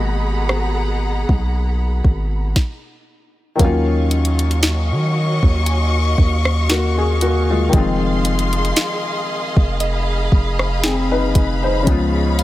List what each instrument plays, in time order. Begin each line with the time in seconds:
Already playing: 808-style bass G#1, felt piano B2 G#3 A#3 F#4, string section G#4 F#5 A#5 B5
0.49 cross-stick
1.29 808-style bass B1, kick
2.04 808-style bass G#1, kick
2.56 kick, snare
3.56 felt piano D#3 F#3, string section F#3 D#5 F5 C#6, kick, closed hi-hat
3.60 808-style bass D#2, felt piano A#3 C#4, synth pluck F5
3.64 felt piano F4
4.11 closed hi-hat
4.25 closed hi-hat
4.39 closed hi-hat
4.51 closed hi-hat
4.63 snare, closed hi-hat
4.91 808-style bass D#3
5.43 808-style bass D#2, kick
5.66 synth pluck G#5, closed hi-hat
6.18 808-style bass D#2, kick
6.45 cross-stick
6.70 felt piano A#3 F#4, snare, closed hi-hat
6.98 felt piano G#4
7.21 felt piano A#3 F#4, closed hi-hat
7.50 felt piano G#3 F4
7.69 felt piano D#3 F3
7.73 808-style bass F1, felt piano G#3 C4, string section G#4 D#5 C6, kick, closed hi-hat
7.78 felt piano F4
8.25 closed hi-hat
8.39 closed hi-hat
8.53 closed hi-hat
8.65 closed hi-hat
8.76 snare, closed hi-hat
9.57 808-style bass F1, kick
9.80 synth pluck D#5, string section B5, closed hi-hat
10.32 808-style bass F1, kick
10.59 cross-stick
10.84 felt piano C4 G#4, snare, closed hi-hat
11.12 808-style bass F#1, felt piano D#4 B4
11.35 808-style bass F1, kick, closed hi-hat
11.63 felt piano D#4 C5
11.83 felt piano C#3 F3
11.87 808-style bass C#2, felt piano G#3 B3, string section G#4 C#5, kick, closed hi-hat
11.92 felt piano F4
12.39 synth pluck F5, closed hi-hat